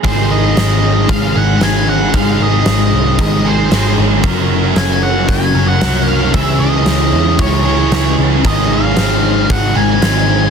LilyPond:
<<
  \new Staff \with { instrumentName = "Lead electric guitar" } { \time 4/4 \key aes \mixolydian \tempo 4 = 114 c''8 ees''4. f''8 ges''8 aes''8 ges''8 | f''8 ees''4. ees''8 c''4 r8 | r4 aes''8 ges''8 aes''8. ges''8. f''8 | fes''8 ees''4. des''4. r8 |
ees''8 f''4. ges''8 aes''4. | }
  \new Staff \with { instrumentName = "Overdriven electric guitar" } { \time 4/4 \key aes \mixolydian <aes c' ees' aes'>2~ <aes c' ees' aes'>8 <aes c' ees' aes'>8 <aes c' ees' aes'>4 | <aes c' ees' aes'>2~ <aes c' ees' aes'>8 <aes c' ees' aes'>8 <aes c' ees' aes'>4 | <ges des' ges' bes'>2~ <ges des' ges' bes'>8 <ges des' ges' bes'>8 <ges des' ges' bes'>4 | <des aes des' fes' aes'>2~ <des aes des' fes' aes'>8 <des aes des' fes' aes'>8 <des aes des' fes' aes'>4 |
<aes, ees aes c' ees' aes'>2~ <aes, ees aes c' ees' aes'>8 <aes, ees aes c' ees' aes'>8 <aes, ees aes c' ees' aes'>4 | }
  \new Staff \with { instrumentName = "Twelve-string acoustic guitar" } { \clef bass \time 4/4 \key aes \mixolydian ees8 ees8 aes8 ees8 aes8 ees8 ees8 aes8 | ees8 ees8 aes8 ees8 aes8 ees8 ees8 aes8 | r4 bes4 bes4. bes8 | fes8 fes8 aes8 fes8 aes8 fes8 fes8 aes8 |
ees8 aes8 c'8 ees8 c'8 ees8 aes8 c'8 | }
  \new Staff \with { instrumentName = "Distorted electric guitar" } { \clef bass \time 4/4 \key aes \mixolydian <aes, ees aes>4 <aes, ees aes>4 <aes, ees aes>8 <ees aes>8 <aes, ees aes>4 | <aes, ees aes>4 <aes, ees aes>4 <aes, ees aes>8 <ees aes>8 <aes, ees aes>4 | <ges, des ges>4 <ges, des ges>4 <ges, des ges>8 <des ges>8 <ges, des ges>4 | <des aes des'>4 <des aes des'>4 <des aes des'>8 <aes des'>8 <des aes des'>4 |
<aes, ees aes>4 <aes, ees aes>4 <aes, ees aes>8 <ees aes>8 <aes, ees aes>4 | }
  \new Staff \with { instrumentName = "Picked electric bass" } { \clef bass \time 4/4 \key aes \mixolydian aes,,4 aes,,4 aes,,8 aes,,8 aes,,4 | aes,,8 aes,,8 aes,,8 c,8 aes,,4 aes,,8 aes,,8 | ges,,4 ges,,4 ges,,8 ges,,8 c,4 | des,8 des,8 des,8 fes,8 des,4 des,8 des,8 |
aes,,4 aes,,4 aes,,8 aes,,8 aes,,4 | }
  \new DrumStaff \with { instrumentName = "Drums" } \drummode { \time 4/4 <hho bd>4 <hho sn>4 <hho bd>4 <hho sn>4 | <hho bd>4 <hho sn>4 <hho bd>4 <hho sn>4 | <hho bd>4 <hho sn>4 <hho bd>4 <hho sn>4 | <hho bd>4 <hho sn>4 <hho bd>4 <hho sn>4 |
<hho bd>4 <hho sn>4 <hho bd>4 <hho sn>4 | }
>>